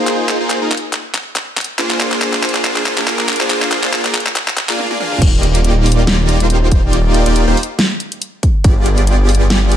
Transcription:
Already playing: A#3 D#4 F4 G#4 C5
0.07 clap, closed hi-hat
0.29 clap, closed hi-hat
0.40 A#3 D#4 F4 G#4 C5
0.50 clap, closed hi-hat
0.62 A#3 D#4 F4 G#4 A#4
0.72 clap, closed hi-hat
0.77 closed hi-hat
0.93 clap, closed hi-hat
1.14 clap, closed hi-hat
1.36 clap, closed hi-hat
1.57 clap, closed hi-hat
1.61 closed hi-hat
1.64 closed hi-hat
1.79 A#3 D4 F4 G#4 C5, clap, closed hi-hat
1.90 clap
2.00 clap, closed hi-hat
2.12 clap
2.22 clap, closed hi-hat
2.33 clap
2.43 clap, closed hi-hat
2.49 closed hi-hat
2.55 clap
2.65 clap, closed hi-hat
2.76 clap
2.86 clap, closed hi-hat
2.98 A#3 D4 F4 G#4 A#4, clap
3.07 clap, closed hi-hat
3.19 clap
3.29 clap, closed hi-hat
3.33 closed hi-hat
3.36 closed hi-hat
3.40 A#3 D4 F4 G#4 C5, clap
3.50 clap, closed hi-hat
3.62 clap
3.72 clap, closed hi-hat
3.83 A#3 D4 F4 G#4 C5, clap
3.93 clap, closed hi-hat
4.05 A#3 D4 F4 G#4 A#4, clap
4.14 clap, closed hi-hat
4.20 closed hi-hat
4.26 clap
4.36 clap, closed hi-hat
4.48 clap
4.57 clap, closed hi-hat
4.69 A#3 D4 F4 G#4 F5, clap
4.79 high tom
4.90 A#3 D4 F4 G#4 D5, high tom
5.00 A#3 D4 F4 G#4 F5, mid tom
5.12 mid tom
5.22 D#1 A#3 D#4 F4 G4 D5, kick, closed hi-hat, crash, ride
5.43 closed hi-hat
5.55 closed hi-hat
5.65 closed hi-hat
5.86 open hi-hat
5.92 closed hi-hat
6.07 snare, closed hi-hat, ride
6.29 closed hi-hat
6.40 D#1 A#3 D#4 F4 G4 C5, closed hi-hat
6.50 closed hi-hat
6.72 kick, closed hi-hat
6.83 D#1 A#3 D#4 F4 G4 D5
6.93 closed hi-hat, ride
7.14 closed hi-hat
7.26 D#1 A#3 D#4 F4 G4 D5, closed hi-hat
7.36 closed hi-hat
7.48 D#1 A#3 D#4 F4 G4 C5
7.57 open hi-hat
7.63 closed hi-hat
7.79 snare, closed hi-hat, ride
8.00 closed hi-hat
8.12 closed hi-hat
8.22 closed hi-hat
8.43 kick, closed hi-hat
8.64 G1 B3 F4 G4 G#4 D5, kick, closed hi-hat, ride
8.86 closed hi-hat
8.98 closed hi-hat
9.07 closed hi-hat
9.29 open hi-hat
9.35 closed hi-hat
9.50 snare, closed hi-hat, ride
9.72 closed hi-hat

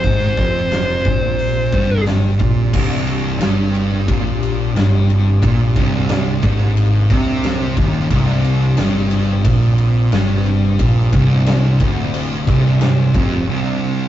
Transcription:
Already playing: C3 G3 C4 C5
0.04 G#1 G#2, kick, open hi-hat
0.37 F1 F2, kick
0.71 snare, open hi-hat
1.05 A#1 A#2, kick
1.39 open hi-hat
1.72 G1 G2, kick
2.06 snare, open hi-hat
2.40 A#1 A#2, kick
2.72 C1 C2 C3 G3 D4, kick, crash
3.07 crash
3.40 G1 G2, snare, crash
3.75 crash
4.08 A#1 A#2, kick, crash
4.43 crash
4.75 G1 G2, snare, crash
5.10 crash
5.43 A#1 A#2, kick, crash
5.76 C1 C2, kick, crash
6.09 snare, crash
6.43 G#1 G#2, kick, crash
6.77 crash
7.10 C2 C3, kick, crash
7.44 snare, crash
7.77 D#1 D#2, kick, crash
8.11 C1 C2 C4, kick, crash
8.44 crash
8.77 G1 G2, snare, crash
9.11 crash
9.44 A#1 A#2, kick, crash
9.78 crash
10.12 G1 G2, snare, crash
10.46 crash
10.79 A#1 A#2, kick, crash
11.13 C1 C2, kick, crash
11.46 snare, crash
11.80 D1 D2, kick, crash
12.14 crash
12.47 C1 C2, kick, crash
12.81 snare, crash
13.14 F1 F2, kick, crash
13.47 C2 C3 G3 D4

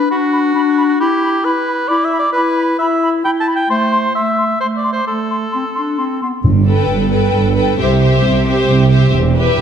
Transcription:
Already playing: B4
0.10 D4 F#4 B5
0.33 B5
0.54 D4 B5
0.78 B5
0.99 E4 G4 B5
1.23 B5
1.45 E4 B4 B5
1.68 B5
1.88 E4 D5 B5
2.05 E5
2.13 B5
2.19 D5
2.32 E4 B4 B5
2.58 B5
2.79 E4 E5 B5
3.03 B5
3.25 E4 G5 B5
3.40 A5
3.48 B5
3.56 G5
3.70 A3 C5 C6
3.92 C6
4.15 A3 E5 C6
4.38 C6
4.60 A3 C5 C6
4.77 D5
4.84 C6
4.93 C5
5.07 A3 A4 C6
5.31 C6
5.52 C4 C6
5.75 D4 C6
5.98 C4 C6
6.22 B3 C6
6.44 G1 G2
6.67 A4 B4 G5
6.88 G1 G2
7.11 A4 B4 G5
7.34 G1 G2
7.56 A4 B4 G5
7.79 C2 C3 G4 C5 E5
8.01 G4 C5 E5
8.24 C2 C3
8.47 G4 C5 E5
8.69 C2 C3
8.91 G4 C5 E5
9.13 E1 E2
9.37 G4 B4 E5

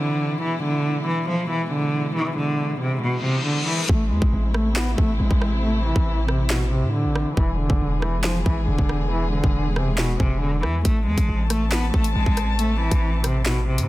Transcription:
Already playing: C3 E3 C4 E4, downlifter
0.00 D3
0.42 B2 E3 G#3
0.63 D3
1.07 E3
1.29 F3
1.50 E3
1.72 D3
2.15 E3
2.37 D3
2.81 C3
3.02 B2, reverse cymbal
3.24 C3
3.46 D3
3.67 E3
3.89 A1 C3 E3 A3 C4 E4, kick
4.11 E2 G#3
4.22 A1, kick
4.33 A1
4.54 A3, cross-stick
4.76 B3, snare, clap
4.98 A1 A3, kick
5.20 A1 G#3
5.31 A1, kick
5.42 cross-stick
5.63 A3
5.85 E3
5.96 A1, kick
6.28 C3, cross-stick
6.50 B2, snare, clap
6.72 C3
6.83 A2
6.94 D3
7.05 A1
7.16 cross-stick
7.37 E1 E3 G#3 B3 G#4, kick
7.59 D3
7.70 E1, kick
7.81 E1
8.02 E3, cross-stick
8.13 F1
8.24 F3, snare, clap
8.46 G#1 E3, kick
8.68 E1 D3
8.78 E1, kick
8.89 cross-stick
9.11 E3
9.33 D3
9.44 E1, kick
9.76 C3, cross-stick
9.98 B2, snare, clap
10.20 E1 C3, kick
10.42 D3
10.63 E2 E3, cross-stick
10.85 A1 A3 C4 A5, kick, closed hi-hat
11.07 E2 G#3
11.18 A1, kick, closed hi-hat
11.29 A1
11.50 A3, cross-stick, closed hi-hat
11.72 B3, snare, clap, closed hi-hat
11.94 A1 A3, kick
12.04 closed hi-hat
12.15 A1 G#3
12.26 A1, kick
12.37 cross-stick, closed hi-hat
12.59 A3, closed hi-hat
12.81 E3
12.91 A1, kick, closed hi-hat
13.24 C3, cross-stick, closed hi-hat
13.46 B2, snare, clap, closed hi-hat
13.68 C3
13.78 A2, closed hi-hat

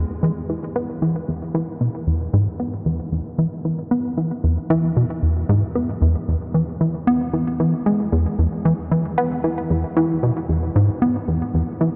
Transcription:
0.23 E3
0.49 E3
0.76 B3
1.02 E3
1.28 E2
1.55 E3
1.81 B2
2.07 E2
2.33 G#2
2.60 B3
2.86 E2
3.12 E2
3.39 E3
3.65 E3
3.91 B3
4.18 E3
4.44 E2
4.70 E3
4.97 B2
5.23 E2
5.49 G#2
5.75 B3
6.02 E2
6.28 E2
6.54 E3
6.81 E3
7.07 B3
7.33 E3
7.60 E3
7.86 G#3
8.12 E2
8.39 E2
8.65 E3
8.92 E3
9.18 B3
9.44 E3
9.70 E2
9.97 E3
10.23 B2
10.49 E2
10.76 G#2
11.02 B3
11.28 E2
11.54 E2
11.81 E3

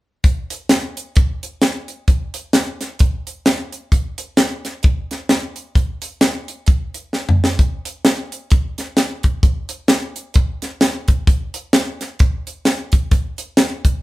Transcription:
0.24 kick, closed hi-hat
0.50 closed hi-hat
0.69 snare, closed hi-hat
0.97 closed hi-hat
1.16 kick, closed hi-hat
1.43 closed hi-hat
1.62 snare, closed hi-hat
1.88 closed hi-hat
2.08 kick, closed hi-hat
2.34 closed hi-hat
2.53 snare, closed hi-hat
2.81 snare, closed hi-hat
2.99 kick, closed hi-hat
3.27 closed hi-hat
3.46 snare, closed hi-hat
3.72 closed hi-hat
3.92 kick, closed hi-hat
4.18 closed hi-hat
4.37 snare, closed hi-hat
4.65 snare, closed hi-hat
4.83 kick, closed hi-hat
5.11 snare, closed hi-hat
5.29 snare, closed hi-hat
5.56 closed hi-hat
5.75 kick, closed hi-hat
6.02 closed hi-hat
6.21 snare, closed hi-hat
6.48 closed hi-hat
6.66 kick, closed hi-hat
6.94 closed hi-hat
7.13 snare
7.29 mid tom
7.44 snare
7.59 kick, closed hi-hat
7.85 closed hi-hat
8.05 snare, closed hi-hat
8.32 closed hi-hat
8.50 kick, closed hi-hat
8.78 snare, closed hi-hat
8.97 snare, closed hi-hat
9.23 kick, closed hi-hat
9.43 kick, closed hi-hat
9.69 closed hi-hat
9.88 snare, closed hi-hat
10.16 closed hi-hat
10.34 kick, closed hi-hat
10.62 snare, closed hi-hat
10.81 snare, closed hi-hat
11.08 kick, closed hi-hat
11.27 kick, closed hi-hat
11.54 closed hi-hat
11.73 snare, closed hi-hat
12.01 snare, closed hi-hat
12.19 kick, closed hi-hat
12.47 closed hi-hat
12.65 snare, closed hi-hat
12.92 kick, closed hi-hat
13.11 kick, closed hi-hat
13.38 closed hi-hat
13.57 snare, closed hi-hat
13.85 kick, closed hi-hat

